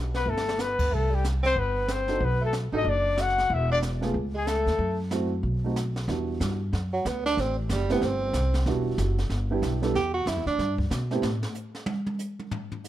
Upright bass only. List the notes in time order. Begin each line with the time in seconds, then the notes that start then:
Already playing: B1
0.26 G1
0.91 C2
1.56 G1
2.20 B1
2.72 A1
2.84 F#1
3.50 E1
4.14 C#2
4.66 D#2
4.79 F#2
5.43 B1
6.08 E2
6.40 G2
6.73 F#2
7.05 D2
7.37 A1
7.69 F#1
8.01 G1
8.33 C2
8.66 E1
8.98 F#1
9.29 G1
9.62 B1
9.94 E2
10.26 F#2
10.36 E2
10.47 D2
10.58 G2
10.90 B2
11.22 A2